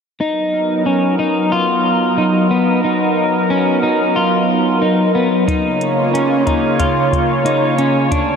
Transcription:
0.21 analog synth pad F#3 B3 D#4 A#4, clean electric guitar D#4
0.86 clean electric guitar C#4
1.19 clean electric guitar D#4
1.52 clean electric guitar F4
2.18 clean electric guitar D#4
2.51 clean electric guitar B3
2.84 clean electric guitar D#4
3.50 clean electric guitar C#4
3.83 clean electric guitar D#4
4.16 clean electric guitar F4
4.82 clean electric guitar D#4
5.15 clean electric guitar B3
5.48 analog synth pad C#3 A#3 F4 C#5, clean electric guitar D#4, kick, closed hi-hat
5.81 closed hi-hat
6.14 clean electric guitar C#4, closed hi-hat
6.47 clean electric guitar D#4, kick, closed hi-hat
6.79 clean electric guitar F4, kick, closed hi-hat
7.13 kick, closed hi-hat
7.45 clean electric guitar D#4, closed hi-hat
7.78 clean electric guitar C#4, closed hi-hat
8.11 analog synth pad D3 A3 F#4, clean electric guitar D4, kick, closed hi-hat

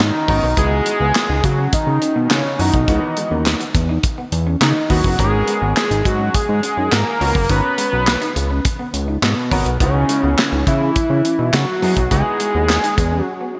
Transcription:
0.00 analog synth bass G#2, analog synth lead D#4, snare, clap
0.28 analog synth bass G#1, grand piano B3 C#4 F#4 A#4, clean electric guitar C#4, kick, open hi-hat
0.43 analog synth bass B1, clean electric guitar B3
0.57 analog synth bass C#2, grand piano B3 D#4 E4 F#4, analog synth lead G#4, kick, closed hi-hat
0.72 muted clean electric guitar stroke
0.86 clean electric guitar G#3, closed hi-hat
1.00 analog synth bass C#2, clean electric guitar B3
1.15 snare, clap, closed hi-hat
1.29 analog synth bass C#2, clean electric guitar D#4
1.44 analog synth bass C#3, analog synth lead F#4, muted clean electric guitar stroke, kick, closed hi-hat
1.58 clean electric guitar C#4
1.73 analog synth bass C#3, analog synth lead D#4, muted clean electric guitar stroke, kick, closed hi-hat
1.87 analog synth bass C#3
2.01 clean electric guitar C#4, closed hi-hat
2.16 analog synth bass B2, clean electric guitar D#4
2.30 analog synth bass C#3, analog synth lead C#4, clean electric guitar D#4, snare, clap, closed hi-hat
2.59 analog synth bass F#2, grand piano B3 D#4 E4 F#4, analog synth lead D#4, muted clean electric guitar stroke, open hi-hat
2.74 analog synth bass B1, clean electric guitar B3, kick, closed hi-hat
2.87 analog synth bass C#2, grand piano E3 B3 D#4 F#4, kick, closed hi-hat
3.02 muted clean electric guitar stroke
3.17 clean electric guitar G#3, closed hi-hat
3.31 analog synth bass D#2, clean electric guitar C#4
3.46 snare, clap, closed hi-hat
3.60 clean electric guitar B3, closed hi-hat
3.75 analog synth bass E2, muted clean electric guitar stroke, kick, closed hi-hat
3.89 clean electric guitar D#4
4.03 kick, closed hi-hat
4.18 clean electric guitar B3
4.32 analog synth bass E2, muted clean electric guitar stroke, closed hi-hat
4.47 clean electric guitar C#4
4.61 analog synth bass C#3, analog synth lead D#4, muted clean electric guitar stroke, snare, clap, closed hi-hat
4.89 analog synth bass D#2, grand piano B3 D#4 E4 F#4, clean electric guitar D#4, analog synth lead F#4, kick, open hi-hat
5.04 analog synth bass F#1, clean electric guitar B3, kick
5.19 analog synth bass G#1, grand piano B3 C#4 F#4 A#4, analog synth lead G#4, kick, closed hi-hat
5.33 muted clean electric guitar stroke
5.48 clean electric guitar G#3, closed hi-hat
5.62 analog synth bass G#1, clean electric guitar B3
5.76 analog synth lead G#4, snare, clap, closed hi-hat
5.91 analog synth bass G#1, clean electric guitar D#4, closed hi-hat
6.05 analog synth bass G#2, analog synth lead F#4, muted clean electric guitar stroke, kick, closed hi-hat
6.20 clean electric guitar C#4
6.34 analog synth bass G#2, analog synth lead G#4, muted clean electric guitar stroke, kick, closed hi-hat
6.49 analog synth bass G#2
6.63 clean electric guitar C#4, closed hi-hat
6.77 analog synth bass F#2, clean electric guitar D#4
6.91 analog synth bass G#2, clean electric guitar D#4, analog synth lead A#4, snare, clap, closed hi-hat
7.20 analog synth bass C#2, grand piano B3 C#4 F#4 A#4, muted clean electric guitar stroke, open hi-hat
7.34 analog synth bass F#1, clean electric guitar B3, kick
7.49 analog synth bass G#1, grand piano B3 C#4 F#4 A#5, analog synth lead B4, kick, closed hi-hat
7.64 muted clean electric guitar stroke
7.78 clean electric guitar G#3, closed hi-hat
7.92 analog synth bass B1, clean electric guitar B3
8.07 snare, clap, closed hi-hat
8.21 clean electric guitar D#4, closed hi-hat
8.36 analog synth bass C#2, muted clean electric guitar stroke, closed hi-hat
8.50 clean electric guitar C#4
8.65 kick, closed hi-hat
8.79 clean electric guitar B3
8.94 analog synth bass C#2, muted clean electric guitar stroke, closed hi-hat
9.08 clean electric guitar D#4
9.22 analog synth bass G#2, analog synth lead B3, muted clean electric guitar stroke, snare, clap, closed hi-hat
9.51 analog synth bass G#1, grand piano B3 C#4 F#4 A#4, clean electric guitar C#4, kick, open hi-hat
9.66 analog synth bass B1, clean electric guitar B3, closed hi-hat
9.80 analog synth bass C#2, grand piano B3 D#4 E4 F#4, analog synth lead C#4, kick, closed hi-hat
9.95 muted clean electric guitar stroke
10.09 clean electric guitar G#3, closed hi-hat
10.23 analog synth bass C#2, clean electric guitar B3
10.38 snare, clap, closed hi-hat
10.52 analog synth bass C#2, clean electric guitar D#4
10.67 analog synth bass C#3, analog synth lead E4, muted clean electric guitar stroke, kick, closed hi-hat
10.81 clean electric guitar C#4
10.96 analog synth bass C#3, muted clean electric guitar stroke, kick, closed hi-hat
11.10 analog synth bass C#3
11.25 clean electric guitar C#4, closed hi-hat
11.39 analog synth bass B2, clean electric guitar D#4
11.53 analog synth bass C#3, clean electric guitar D#4, analog synth lead F#4, snare, clap, closed hi-hat
11.82 analog synth bass F#2, grand piano B3 D#4 E4 G#4, muted clean electric guitar stroke, open hi-hat
11.97 analog synth bass B1, clean electric guitar B3, kick, closed hi-hat
12.11 analog synth bass C#2, grand piano B3 D#4 E4 F#4, analog synth lead G#4, kick, closed hi-hat
12.26 muted clean electric guitar stroke
12.40 clean electric guitar G#3, closed hi-hat
12.54 analog synth bass D#2, clean electric guitar B3
12.69 snare, clap, closed hi-hat
12.83 clean electric guitar D#4, closed hi-hat
12.97 analog synth bass E2, muted clean electric guitar stroke, kick, closed hi-hat
13.12 clean electric guitar C#4
13.23 analog synth lead F#4
13.41 clean electric guitar B3
13.55 muted clean electric guitar stroke

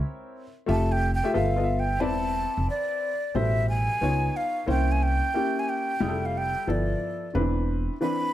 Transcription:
Already playing: grand piano C4 E4 A#4 C#5
0.66 upright bass F1, grand piano A3 F4 G4 E5
0.71 flute A5
0.92 flute G5
1.15 flute G5
1.24 grand piano A3 F4 G4 E5
1.34 upright bass G1, grand piano B3 F4 A4 E5, flute F5
1.56 grand piano B3 F4 A4 D#5
1.64 grand piano E5
1.79 flute G5
2.00 upright bass E1, grand piano C4 E4 B4 D5, flute A5
2.57 upright bass F1
2.70 flute D5
3.35 upright bass A1, grand piano B2 G3 A4 C5, flute E5
3.69 flute G#5
4.01 upright bass C#2, grand piano B3 D#4 F4 C#5
4.37 flute F5
4.66 upright bass C2, grand piano A#3 C#4 E4 C5, flute G5
4.92 flute G#5
5.03 flute G5
5.34 grand piano A#3 C#4 E4 G4
5.59 flute G#5
5.69 flute G5
6.00 upright bass F1, grand piano G3 E4 F4 G#4
6.08 grand piano A4
6.26 flute F5
6.38 flute G5
6.67 upright bass G1, grand piano F3 B3 E4 A4, flute D5
7.34 upright bass E1, grand piano D3 C4 D4 B4
7.40 grand piano E3
8.01 grand piano E3 C4 D4 B4, flute B5

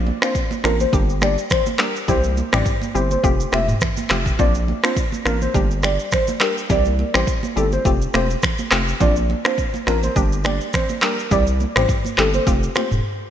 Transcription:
Already playing: sub bass A#1, synth pluck A#3 C4 D4 F4
0.07 high conga
0.22 synth pluck A#3 C4 D4 F4, soft synth lead C5, finger snap, cross-stick, shaker
0.35 kick, shaker
0.51 high conga, shaker
0.64 sub bass A1, synth pluck A#3 C4 D4 F4, soft synth lead A#4, finger snap, cross-stick, shaker
0.80 soft synth lead C5, high conga, shaker
0.93 sub bass G1, synth pluck G3 A#3 D4 G4, kick, shaker
1.10 shaker
1.21 synth pluck G3 A#3 D4 G4, soft synth lead D5, finger snap, cross-stick, high conga, shaker
1.38 shaker
1.50 soft synth lead C5, finger snap, kick, cross-stick, low conga, shaker
1.66 high conga, shaker
1.79 synth pluck G3 A#3 D4 G4, soft synth lead A#4, finger snap, cross-stick, clap, shaker
1.96 shaker
2.08 sub bass C2, synth pluck G3 C4 E4 G4, soft synth lead C5, kick, low conga, shaker
2.24 high conga, shaker
2.37 high conga, shaker
2.53 sub bass A1, synth pluck G3 C4 E4 G4, soft synth lead D5, finger snap, cross-stick, mid tom, shaker
2.66 kick, shaker
2.82 high conga, shaker
2.95 sub bass G1, synth pluck G3 C4 E4 G4, soft synth lead C5, shaker
3.11 soft synth lead C5, high conga, shaker
3.23 sub bass F1, synth pluck A3 C4 F4 G4, kick, shaker
3.40 shaker
3.52 sub bass E1, synth pluck A3 C4 F4 G4, soft synth lead E5, finger snap, cross-stick, high conga, shaker
3.68 mid tom, shaker
3.81 finger snap, kick, cross-stick, low conga, shaker
3.97 high conga, shaker
4.10 sub bass F1, synth pluck A3 C4 F4 G4, finger snap, cross-stick, clap, low conga, shaker
4.26 kick, shaker
4.39 sub bass A#1, synth pluck A#3 C4 D4 F4, soft synth lead D5, kick, low conga, shaker
4.55 high conga, shaker
4.68 high conga
4.83 synth pluck A#3 C4 D4 F4, soft synth lead C5, finger snap, cross-stick, shaker
4.97 kick, shaker
5.12 high conga, shaker
5.25 sub bass A1, synth pluck A#3 C4 D4 F4, soft synth lead A#4, finger snap, cross-stick, shaker
5.42 soft synth lead C5, high conga, shaker
5.54 sub bass G1, synth pluck G3 A#3 D4 G4, kick, shaker
5.71 shaker
5.83 synth pluck G3 A#3 D4 G4, soft synth lead D5, finger snap, cross-stick, high conga, shaker
6.00 shaker
6.12 soft synth lead C5, finger snap, kick, cross-stick, low conga, shaker
6.28 high conga, shaker
6.40 synth pluck G3 A#3 D4 G4, soft synth lead A#4, finger snap, cross-stick, clap, shaker
6.58 shaker
6.70 sub bass C2, synth pluck G3 C4 E4 G4, soft synth lead D5, kick, low conga, shaker
6.85 high conga, shaker
6.99 high conga
7.14 sub bass A1, synth pluck G3 C4 E4 G4, soft synth lead C5, finger snap, cross-stick, shaker
7.27 kick, shaker
7.43 high conga, shaker
7.56 sub bass G1, synth pluck G3 C4 E4 G4, soft synth lead A4, shaker
7.72 soft synth lead C5, high conga, shaker
7.85 sub bass F1, synth pluck A3 C4 F4 G4, kick, shaker
8.02 shaker
8.14 sub bass E1, synth pluck A3 C4 F4 G4, soft synth lead C5, finger snap, cross-stick, high conga, shaker
8.30 shaker
8.42 finger snap, kick, cross-stick, low conga, shaker
8.58 high conga, shaker
8.71 sub bass F1, synth pluck A3 C4 F4 G4, finger snap, cross-stick, clap, shaker
8.89 shaker
9.00 sub bass A#1, synth pluck A#3 C4 D4 F4, soft synth lead D5, kick, low conga, shaker
9.16 high conga, shaker
9.30 high conga
9.45 synth pluck A#3 C4 D4 F4, soft synth lead C5, finger snap, cross-stick, shaker
9.58 kick, shaker
9.74 high conga, shaker
9.87 sub bass A1, synth pluck A#3 C4 D4 F4, soft synth lead A#4, finger snap, cross-stick, shaker
10.03 soft synth lead C5, high conga, shaker
10.16 sub bass G1, synth pluck G3 A#3 D4 G4, kick, shaker
10.33 shaker
10.44 synth pluck G3 A#3 D4 G4, soft synth lead D5, finger snap, cross-stick, high conga, shaker
10.61 shaker
10.73 soft synth lead C5, finger snap, kick, cross-stick, low conga, shaker
10.89 high conga, shaker
11.02 synth pluck G3 A#3 D4 G4, soft synth lead A#4, finger snap, cross-stick, clap, shaker
11.19 shaker
11.31 sub bass C2, synth pluck G3 C4 E4 G4, soft synth lead D5, kick, low conga, shaker
11.47 shaker
11.60 high conga, shaker
11.76 sub bass A1, synth pluck G3 C4 E4 G4, soft synth lead C5, finger snap, cross-stick, mid tom, shaker
11.89 kick, shaker
12.05 high conga, shaker
12.18 sub bass G1, synth pluck G3 C4 E4 G4, soft synth lead A4, finger snap, cross-stick, clap, shaker
12.34 soft synth lead C5, high conga, shaker
12.47 sub bass F1, synth pluck A3 C4 F4 G4, kick, shaker
12.63 shaker
12.75 synth pluck A3 C4 F4 G4, soft synth lead C5, finger snap, cross-stick, high conga, shaker
12.91 sub bass E1, mid tom, shaker

